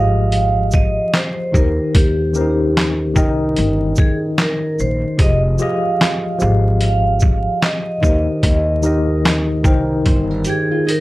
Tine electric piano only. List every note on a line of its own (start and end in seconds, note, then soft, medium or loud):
0.00 1.56 F3 medium
0.00 1.56 F4 medium
0.00 1.54 G4 medium
0.00 1.56 G#4 medium
0.00 1.56 D#5 medium
1.52 2.31 D#3 medium
1.52 2.32 D#4 medium
1.52 2.32 G4 medium
1.52 2.32 A#4 medium
1.52 2.33 C5 medium
2.33 3.12 D#3 medium
2.33 2.43 C#4 medium
2.33 3.13 G4 medium
2.33 3.14 A#4 medium
2.37 3.14 D#4 medium
2.37 3.14 C5 medium
3.14 4.71 D#3 medium
3.14 4.72 D#4 medium
3.14 4.73 A#4 medium
3.14 4.73 D#5 medium
3.14 4.72 G5 medium
5.18 5.57 F3 medium
5.18 5.58 F4 medium
5.18 5.58 G4 medium
5.18 5.59 G#4 medium
5.18 5.59 D#5 medium
5.58 6.37 F3 medium
5.58 6.37 F4 medium
5.58 6.38 G4 medium
5.58 6.38 G#4 medium
5.58 6.39 D#5 medium
6.38 7.96 F3 medium
6.38 7.96 F4 medium
6.38 7.97 G4 medium
6.38 7.97 G#4 medium
6.38 7.97 F5 medium
8.01 8.80 D#3 medium
8.01 8.80 D#4 medium
8.01 8.81 G4 medium
8.01 8.81 A#4 medium
8.01 8.82 C5 medium
8.82 9.61 D#3 medium
8.82 9.61 D#4 medium
8.82 9.62 G4 medium
8.82 9.62 A#4 medium
8.86 9.63 D#5 medium
9.63 11.00 D#3 medium
9.63 11.00 D#4 medium
9.63 11.00 A#4 medium
9.63 11.00 C5 loud
9.63 11.00 G5 medium